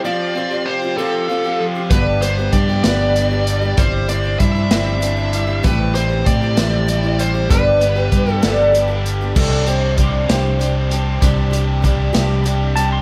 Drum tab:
CC |------|------|------|------|
HH |------|xxxxxx|xxxxxx|xxxxxx|
SD |------|---o--|---o--|---o--|
BD |------|o-o---|o-o---|o-o---|

CC |------|x-----|------|
HH |xxxxxx|-xxxxx|xxxxxx|
SD |---o--|---o--|---o--|
BD |o-o---|o-o---|o-o---|